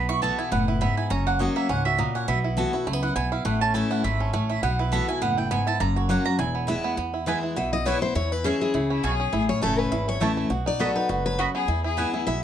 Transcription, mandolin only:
0.09 C#6
0.22 A5
0.39 G#5
0.52 F#5
0.68 B4
0.81 E5
0.97 G#5
1.10 A#5
1.27 F#5
1.40 D#5
1.56 E5
1.69 F#5
1.85 E5
1.99 D#5
2.15 F#5
2.28 E5
3.03 F#5
3.16 G#5
3.32 F5
3.46 F#5
3.61 A5
3.75 G#5
3.91 F#5
4.04 E5
4.20 A4
4.34 C#5
4.49 E5
4.63 F#5
4.79 B4
4.92 E5
5.09 G#5
5.22 F#5
5.38 G5
5.52 G#5
5.67 A5
5.81 A#5
5.97 C#5
6.10 F#5
6.26 A#5
6.39 G#5
7.27 B3 E4 B4 G#5
7.86 B3 E4 B4 G#5
8.44 C#4 G#4 E5 G#5
9.03 C#4 G#4 E5 G#5
9.62 A3 E4 C#5 A5
10.21 A3 E4 C#5 A5
10.80 B3 F#4 D#5 B5
11.39 B3 F#4 D#5 B5
11.97 B3 E4 B4 G#5

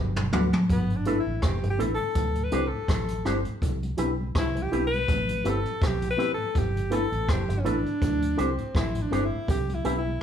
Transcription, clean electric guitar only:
0.17 muted clean electric guitar stroke
0.33 D4 F#4 B4
1.06 E4 A4 B4
1.63 muted clean electric guitar stroke
1.79 E4 A4 B4
2.52 D4 G4 C5
3.25 D4 G4 C5
3.98 E4 G4 B4
4.55 muted clean electric guitar stroke
4.72 E4 G4 B4
5.45 C4 G4 B4
6.18 C4 G4 B4
6.91 E4 A4 B4
7.48 muted clean electric guitar stroke
7.65 E4 A4 B4
8.37 D4 G4 C5
9.12 D4 G4 C5
9.85 E4 G4 B4

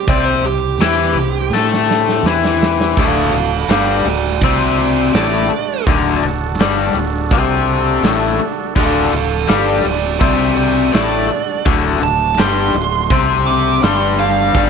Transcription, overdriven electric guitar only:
0.09 C3 C4
0.46 C3
0.81 E3 E4
1.18 C3
1.54 A3 A4
2.26 E3 E4
2.98 D2 D3
3.36 D2
3.70 G2 G3
4.08 D2
4.43 C3 C4
5.15 A2 A3
5.51 muted overdriven electric guitar stroke
5.87 D2 D3
6.24 D2
6.60 G2 G3
6.96 D2
7.32 C3 C4
8.04 A2 A3
8.40 muted overdriven electric guitar stroke
8.76 D2 D3
9.12 D2
9.48 G2 G3
9.85 D2
10.20 C3 C4
10.93 A2 A3
11.30 muted overdriven electric guitar stroke
11.66 D2 D3
12.01 D2
12.38 G2 G3
12.75 D2
13.11 C3 C4
13.82 G2 G3
14.54 G2 G3

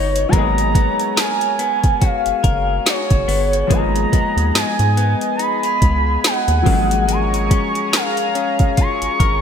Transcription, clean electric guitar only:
Already playing: G#3 D#4 F#4 B4
0.33 G#3
0.75 B3
1.17 A#4
1.59 B3
2.01 F#4
2.44 A#4
2.86 F#4
3.28 B3
3.70 G#3
4.12 B3
4.97 B3
5.39 D#4
5.64 F4
6.66 G#3
7.08 G#3
7.51 C#4
7.93 A#4
8.35 C#4
8.78 F4
9.20 A#4

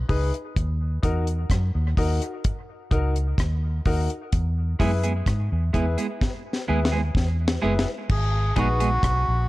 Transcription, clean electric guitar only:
4.79 G#3 B3 E4 G#4
5.03 G#3 B3 E4 G#4
5.73 G#3 B3 E4 G#4
5.98 G#3 B3 E4 G#4
6.68 G#3 B3 E4 G#4
6.92 G#3 B3 E4 G#4
7.62 G#3 B3 E4 G#4
8.56 G#3 B3 D#4 G#4
8.80 G#3 B3 D#4 G#4

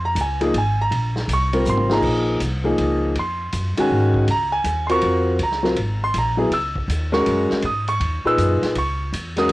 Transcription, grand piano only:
0.05 A#5
0.21 G#5
0.41 F3 A#3 D#4 G#4
0.58 G#5
0.81 A#5
1.33 C#6
1.53 G3 C4 F4 A#4
1.70 C6
1.90 F3 A#3 D#4 G#4 A#5
2.64 F3 A#3 D#4 G#4
3.19 C6
3.77 D#3 G#3 C#4 F#4 G#5
4.31 A#5
4.52 G#5
4.87 C4 F4 F#4 A#4 C6
4.91 C#6
5.43 A#5
5.63 F#3 C4 F4 A#4
6.04 C6
6.18 A#5
6.37 F#3 B3 E4 G#4
6.53 E6
7.12 G#3 C#4 F#4 A#4 C#6
7.65 D#6
7.89 C#6
8.25 A#2 D#4 G#4 B4 E6
8.78 C#6
9.38 G#3 C#4 F#4 A#4 D#6

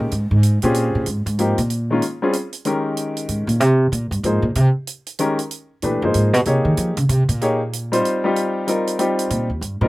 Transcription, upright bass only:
0.00 A#2
0.12 G#2
0.31 G#2
0.63 A#2
0.95 A#2
1.07 G#2
1.26 G#2
1.58 A#2
3.29 G#2
3.47 A#2
3.60 C3
3.92 A#2
4.11 G2
4.23 G#2
4.42 A#2
4.56 C3
5.83 A#2
6.02 G2
6.15 G#2
6.33 B2
6.46 C3
6.65 D#3
6.78 F3
6.97 C#3
7.09 C3
7.29 A#2
9.31 A#2
9.50 D#2
9.61 G2
9.81 A#2

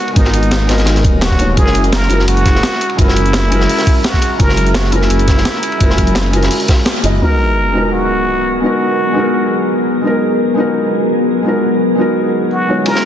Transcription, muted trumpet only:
Already playing: F#4
0.16 D#4
1.22 F#4
1.57 G#4
1.92 A#4
2.28 F#4
2.99 E4
4.04 F#4
4.40 A#4
4.75 F#4
4.93 E4
7.22 A#4
7.92 F#4
8.63 F#4
12.52 F#4
12.87 A#4

